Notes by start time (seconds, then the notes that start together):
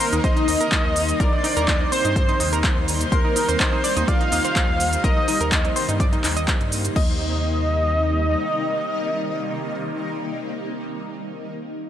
Already playing: C3 D#3 G3 A#3 D#4 A#4 C5 C6
0.00 C5, open hi-hat, shaker
0.13 D#2 D#4, closed hi-hat, shaker
0.24 C5 D#5, kick, closed hi-hat, shaker
0.37 D#4, closed hi-hat
0.48 D#2 D#4, open hi-hat, shaker
0.61 A#4, closed hi-hat, shaker
0.72 kick, clap, closed hi-hat, shaker
0.85 D#2
0.96 open hi-hat, shaker
1.09 closed hi-hat, shaker
1.20 A#1 A#4 D5, kick, closed hi-hat, shaker
1.33 D#4
1.44 D#4, open hi-hat, shaker
1.57 D#2 A#4, closed hi-hat, shaker
1.68 D#4, kick, clap, closed hi-hat, shaker
1.81 D#4
1.92 C5, open hi-hat, shaker
2.05 G2 D#4, closed hi-hat, shaker
2.16 C5, kick, closed hi-hat, shaker
2.29 D#4, closed hi-hat
2.40 D#2 D#4, open hi-hat, shaker
2.53 A#4, closed hi-hat, shaker
2.64 kick, clap, closed hi-hat, shaker
2.77 D#2
2.88 open hi-hat, shaker
3.01 closed hi-hat, shaker
3.12 D#2 A#4 C5, kick, closed hi-hat, shaker
3.25 D#4
3.36 D#4, open hi-hat, shaker
3.49 D#2 C5, closed hi-hat, shaker
3.60 D#4 C5, kick, clap, closed hi-hat, shaker
3.73 D#4
3.84 D5, open hi-hat, shaker
3.97 D#2 D#4, closed hi-hat, shaker
4.08 D5 F5, kick, closed hi-hat, shaker
4.21 D#4, closed hi-hat
4.32 D#2 D#4, open hi-hat, shaker
4.45 C5, closed hi-hat, shaker
4.56 kick, clap, closed hi-hat, shaker
4.69 D#2
4.80 open hi-hat, shaker
4.93 closed hi-hat, shaker
5.04 A#1 A#4 D#5, kick, closed hi-hat, shaker
5.17 D#4
5.28 D#4, open hi-hat, shaker
5.41 D#2 A#4, closed hi-hat, shaker
5.52 D#4, kick, clap, closed hi-hat, shaker
5.65 D#4, closed hi-hat
5.76 C5, open hi-hat, shaker
5.89 G2 D#4, closed hi-hat, shaker
6.00 D5, kick, closed hi-hat, shaker
6.13 D#4, closed hi-hat
6.24 D#2 D#4, clap, open hi-hat, shaker
6.37 D#5, closed hi-hat, shaker
6.48 kick, clap, closed hi-hat, shaker
6.60 G2, closed hi-hat
6.72 open hi-hat, shaker
6.85 closed hi-hat, shaker
6.96 D#2 C3 D#3 G3 A#3 D#4 D#5, kick, crash